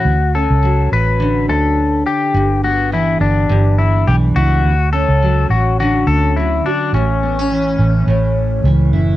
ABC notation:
X:1
M:4/4
L:1/16
Q:"Swing 16ths" 1/4=105
K:D
V:1 name="Electric slide guitar"
F2 A4 B4 A4 G2- | G2 F2 E2 D4 E2 G2 F2- | F2 A4 F2 F2 A2 E2 D2 | C8 z8 |]
V:2 name="Steel-string acoustic guitar" clef=bass
z2 C2 F,4 D,8 | G,,2 B,2 E,4 G,,4 E,2 E2 | z2 C2 F,4 D,4 F,2 F2 | A,,2 B, C E,4 A,,4 E,2 E2 |]
V:3 name="Fingered electric bass" clef=bass
D,,3 C,,3 A,,,4 D,,4 z2 | G,,,6 G,,,2 G,,,4 B,,,2 C,,2 | D,,3 C,,3 A,,,4 D,,4 z2 | A,,,6 A,,,2 A,,,4 C,,2 F,,,2 |]